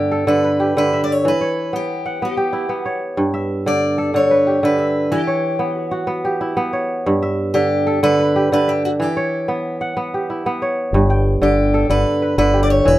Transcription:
Already playing: kora G2 D3 B3 E4 E5, steel-string acoustic guitar G4
0.11 kora A4
0.27 kora D3, steel-string acoustic guitar B4
0.44 kora B4
0.60 kora G4
0.77 kora D3, steel-string acoustic guitar B4
0.93 kora E5
1.04 steel-string acoustic guitar D5
1.12 steel-string acoustic guitar C#5
1.25 kora E3, steel-string acoustic guitar B4
1.41 kora C#5
1.73 kora B3, steel-string acoustic guitar G4
2.06 kora F#5
2.22 kora B3, steel-string acoustic guitar G4
2.37 kora G4
2.53 kora E4
2.69 kora B3
2.77 steel-string acoustic guitar F#4
2.85 kora C#5
3.17 kora G2
3.34 kora E5
3.66 kora D3, steel-string acoustic guitar D5
3.98 kora A4
4.14 kora D3, steel-string acoustic guitar C#5
4.31 kora B4
4.47 kora G4
4.63 kora D3, steel-string acoustic guitar B4
4.79 kora E5
5.12 kora E3, steel-string acoustic guitar G4
5.27 kora C#5
5.59 kora B3
5.75 steel-string acoustic guitar F#4
5.91 kora F#4
6.07 kora B3
6.25 kora G4
6.41 kora E4
6.57 kora B3
6.73 kora C#5
7.06 kora G2
7.22 kora E5
7.54 kora D3, steel-string acoustic guitar G4
7.87 kora A4
8.03 kora D3, steel-string acoustic guitar B4
8.19 kora B4
8.36 kora G4
8.52 kora D3, steel-string acoustic guitar B4
8.68 steel-string acoustic guitar G4, kora E5
8.85 steel-string acoustic guitar F#4
9.00 kora E3, steel-string acoustic guitar G4
9.17 kora C#5
9.48 kora B3
9.81 kora F#5
9.97 kora B3
10.14 kora G4
10.30 kora E4
10.46 kora B3
10.62 kora C#5
10.93 fingered electric bass G1, kora G2
11.10 kora G5
11.41 fingered electric bass G1, kora D3, steel-string acoustic guitar G4
11.74 kora A4
11.89 fingered electric bass G1, kora D3, steel-string acoustic guitar B4
12.22 kora B4
12.38 fingered electric bass G1, kora D3, steel-string acoustic guitar B4
12.54 kora G4
12.63 steel-string acoustic guitar D5
12.70 steel-string acoustic guitar C#5
12.85 fingered electric bass E1, kora E3, steel-string acoustic guitar B4

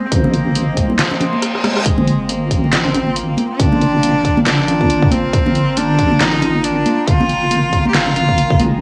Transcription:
Already playing: synth drone C4 C5 D#5
0.06 cello C4
0.12 wobble bass G#1, cello A#3, kick, closed hi-hat
0.24 high conga, low conga
0.34 closed hi-hat
0.55 closed hi-hat, high conga
0.77 wobble bass C2, kick, closed hi-hat
0.90 high conga
0.99 cello A#3, snare, clap, closed hi-hat, reverse cymbal
1.11 low conga
1.21 closed hi-hat, low conga
1.33 high conga
1.42 cross-stick, closed hi-hat
1.55 cross-stick
1.64 cello G#3, cross-stick, closed hi-hat, high conga
1.77 cross-stick
1.86 wobble bass G1, synth drone F4 A#4 G5, kick, closed hi-hat
1.98 high conga, low conga
2.08 closed hi-hat
2.29 cello A#3, closed hi-hat, high conga
2.51 wobble bass G#1, kick, closed hi-hat
2.64 high conga
2.72 cello C4, snare, clap, closed hi-hat
2.85 low conga
2.94 closed hi-hat, low conga
3.07 high conga
3.16 cello A#3, closed hi-hat
3.37 closed hi-hat, high conga
3.60 wobble bass G1, cello D4, kick, closed hi-hat
3.72 high conga, low conga
3.81 closed hi-hat
4.03 closed hi-hat, high conga
4.25 wobble bass G1, kick, closed hi-hat
4.37 high conga
4.46 cello D4, snare, clap, closed hi-hat
4.59 low conga
4.68 closed hi-hat, low conga
4.81 kick, high conga
4.90 wobble bass G1, closed hi-hat
5.03 kick
5.11 cello C4, closed hi-hat, high conga
5.33 wobble bass G1, kick, closed hi-hat
5.46 high conga, low conga
5.55 closed hi-hat
5.77 cello D4, closed hi-hat, high conga
5.99 wobble bass G#1, kick, closed hi-hat
6.12 high conga
6.20 cello D#4, snare, clap, closed hi-hat
6.34 low conga
6.42 closed hi-hat, low conga
6.54 high conga
6.64 cello D4, closed hi-hat
6.86 closed hi-hat, high conga
7.07 wobble bass G1, cello F4, kick, closed hi-hat
7.20 high conga, low conga
7.29 closed hi-hat
7.51 closed hi-hat, high conga
7.73 wobble bass G1, kick, closed hi-hat
7.85 cello G4, high conga
7.94 cello F4, snare, clap, closed hi-hat
8.07 low conga
8.16 closed hi-hat, low conga
8.29 kick, high conga
8.38 closed hi-hat
8.51 kick
8.60 cello G#3, closed hi-hat, high conga

